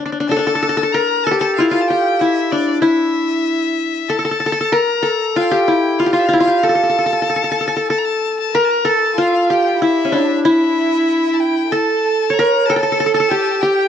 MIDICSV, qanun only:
0, 0, Header, 1, 2, 480
1, 0, Start_track
1, 0, Tempo, 634249
1, 701, Time_signature, 3, 2, 24, 8
1, 10504, End_track
2, 0, Start_track
2, 0, Title_t, "Qanun"
2, 0, Program_c, 0, 107
2, 42, Note_on_c, 0, 62, 58
2, 90, Note_off_c, 0, 62, 0
2, 93, Note_on_c, 0, 62, 51
2, 150, Note_off_c, 0, 62, 0
2, 153, Note_on_c, 0, 62, 64
2, 217, Note_off_c, 0, 62, 0
2, 220, Note_on_c, 0, 62, 54
2, 237, Note_on_c, 0, 69, 96
2, 273, Note_off_c, 0, 62, 0
2, 276, Note_on_c, 0, 62, 68
2, 290, Note_off_c, 0, 69, 0
2, 293, Note_on_c, 0, 69, 61
2, 352, Note_off_c, 0, 69, 0
2, 355, Note_on_c, 0, 69, 78
2, 414, Note_off_c, 0, 69, 0
2, 418, Note_on_c, 0, 69, 66
2, 470, Note_off_c, 0, 69, 0
2, 473, Note_on_c, 0, 69, 74
2, 519, Note_off_c, 0, 69, 0
2, 522, Note_on_c, 0, 69, 77
2, 580, Note_off_c, 0, 69, 0
2, 583, Note_on_c, 0, 69, 90
2, 625, Note_off_c, 0, 69, 0
2, 628, Note_on_c, 0, 69, 72
2, 713, Note_on_c, 0, 70, 96
2, 759, Note_off_c, 0, 69, 0
2, 958, Note_on_c, 0, 69, 89
2, 993, Note_on_c, 0, 67, 73
2, 1004, Note_off_c, 0, 70, 0
2, 1063, Note_off_c, 0, 69, 0
2, 1066, Note_on_c, 0, 69, 87
2, 1199, Note_on_c, 0, 65, 75
2, 1211, Note_on_c, 0, 64, 78
2, 1256, Note_off_c, 0, 65, 0
2, 1295, Note_on_c, 0, 65, 82
2, 1341, Note_off_c, 0, 64, 0
2, 1406, Note_off_c, 0, 62, 0
2, 1436, Note_off_c, 0, 67, 0
2, 1439, Note_on_c, 0, 67, 76
2, 1672, Note_on_c, 0, 64, 73
2, 1717, Note_off_c, 0, 65, 0
2, 1908, Note_on_c, 0, 62, 83
2, 1952, Note_off_c, 0, 69, 0
2, 2130, Note_off_c, 0, 64, 0
2, 2133, Note_on_c, 0, 64, 93
2, 2389, Note_off_c, 0, 67, 0
2, 3038, Note_off_c, 0, 62, 0
2, 3099, Note_on_c, 0, 69, 80
2, 3166, Note_off_c, 0, 69, 0
2, 3169, Note_on_c, 0, 69, 63
2, 3187, Note_off_c, 0, 64, 0
2, 3212, Note_off_c, 0, 69, 0
2, 3215, Note_on_c, 0, 69, 71
2, 3260, Note_off_c, 0, 69, 0
2, 3263, Note_on_c, 0, 69, 60
2, 3327, Note_off_c, 0, 69, 0
2, 3330, Note_on_c, 0, 69, 65
2, 3374, Note_off_c, 0, 69, 0
2, 3377, Note_on_c, 0, 69, 72
2, 3420, Note_off_c, 0, 69, 0
2, 3423, Note_on_c, 0, 69, 78
2, 3483, Note_off_c, 0, 69, 0
2, 3486, Note_on_c, 0, 69, 64
2, 3575, Note_on_c, 0, 70, 103
2, 3620, Note_off_c, 0, 69, 0
2, 3803, Note_on_c, 0, 69, 85
2, 3849, Note_off_c, 0, 70, 0
2, 4058, Note_on_c, 0, 65, 87
2, 4173, Note_on_c, 0, 67, 85
2, 4297, Note_on_c, 0, 64, 76
2, 4342, Note_off_c, 0, 65, 0
2, 4538, Note_on_c, 0, 65, 79
2, 4583, Note_off_c, 0, 64, 0
2, 4585, Note_off_c, 0, 67, 0
2, 4588, Note_on_c, 0, 67, 71
2, 4636, Note_off_c, 0, 65, 0
2, 4639, Note_on_c, 0, 65, 81
2, 4690, Note_off_c, 0, 69, 0
2, 4754, Note_off_c, 0, 65, 0
2, 4757, Note_on_c, 0, 65, 83
2, 4793, Note_on_c, 0, 64, 72
2, 4838, Note_off_c, 0, 65, 0
2, 4846, Note_on_c, 0, 65, 88
2, 4892, Note_off_c, 0, 64, 0
2, 4897, Note_off_c, 0, 67, 0
2, 4900, Note_on_c, 0, 67, 78
2, 5019, Note_on_c, 0, 69, 96
2, 5061, Note_off_c, 0, 69, 0
2, 5064, Note_on_c, 0, 69, 74
2, 5107, Note_off_c, 0, 69, 0
2, 5110, Note_on_c, 0, 69, 68
2, 5168, Note_off_c, 0, 69, 0
2, 5171, Note_on_c, 0, 69, 54
2, 5216, Note_off_c, 0, 69, 0
2, 5219, Note_on_c, 0, 69, 63
2, 5283, Note_off_c, 0, 69, 0
2, 5286, Note_on_c, 0, 69, 57
2, 5340, Note_off_c, 0, 69, 0
2, 5343, Note_on_c, 0, 69, 65
2, 5390, Note_off_c, 0, 69, 0
2, 5393, Note_on_c, 0, 69, 55
2, 5460, Note_off_c, 0, 69, 0
2, 5463, Note_on_c, 0, 69, 62
2, 5519, Note_off_c, 0, 69, 0
2, 5522, Note_on_c, 0, 69, 60
2, 5567, Note_off_c, 0, 69, 0
2, 5570, Note_on_c, 0, 69, 63
2, 5627, Note_off_c, 0, 69, 0
2, 5630, Note_on_c, 0, 69, 60
2, 5684, Note_off_c, 0, 69, 0
2, 5687, Note_on_c, 0, 69, 73
2, 5753, Note_off_c, 0, 69, 0
2, 5756, Note_on_c, 0, 69, 54
2, 5806, Note_off_c, 0, 69, 0
2, 5809, Note_on_c, 0, 69, 71
2, 5850, Note_off_c, 0, 67, 0
2, 5864, Note_off_c, 0, 65, 0
2, 5873, Note_off_c, 0, 69, 0
2, 5876, Note_on_c, 0, 69, 66
2, 5976, Note_off_c, 0, 69, 0
2, 5979, Note_on_c, 0, 69, 79
2, 6468, Note_on_c, 0, 70, 99
2, 6514, Note_off_c, 0, 69, 0
2, 6696, Note_on_c, 0, 69, 93
2, 6742, Note_off_c, 0, 70, 0
2, 6947, Note_on_c, 0, 65, 83
2, 7190, Note_on_c, 0, 67, 75
2, 7430, Note_on_c, 0, 64, 70
2, 7475, Note_off_c, 0, 65, 0
2, 7583, Note_off_c, 0, 69, 0
2, 7603, Note_on_c, 0, 61, 50
2, 7660, Note_on_c, 0, 62, 80
2, 7706, Note_off_c, 0, 61, 0
2, 7905, Note_off_c, 0, 64, 0
2, 7908, Note_on_c, 0, 64, 96
2, 8140, Note_off_c, 0, 67, 0
2, 8790, Note_off_c, 0, 62, 0
2, 8870, Note_on_c, 0, 69, 86
2, 8963, Note_off_c, 0, 64, 0
2, 9309, Note_on_c, 0, 73, 71
2, 9376, Note_on_c, 0, 70, 106
2, 9421, Note_off_c, 0, 69, 0
2, 9609, Note_on_c, 0, 69, 93
2, 9655, Note_off_c, 0, 69, 0
2, 9655, Note_off_c, 0, 70, 0
2, 9658, Note_on_c, 0, 69, 71
2, 9705, Note_off_c, 0, 69, 0
2, 9708, Note_on_c, 0, 69, 74
2, 9774, Note_off_c, 0, 69, 0
2, 9777, Note_on_c, 0, 69, 70
2, 9836, Note_off_c, 0, 69, 0
2, 9839, Note_on_c, 0, 69, 76
2, 9882, Note_off_c, 0, 69, 0
2, 9885, Note_on_c, 0, 69, 65
2, 9944, Note_off_c, 0, 69, 0
2, 9947, Note_on_c, 0, 69, 76
2, 9986, Note_off_c, 0, 69, 0
2, 9989, Note_on_c, 0, 69, 74
2, 10074, Note_on_c, 0, 67, 78
2, 10083, Note_off_c, 0, 73, 0
2, 10309, Note_off_c, 0, 67, 0
2, 10312, Note_on_c, 0, 67, 80
2, 10504, Note_off_c, 0, 67, 0
2, 10504, Note_off_c, 0, 69, 0
2, 10504, End_track
0, 0, End_of_file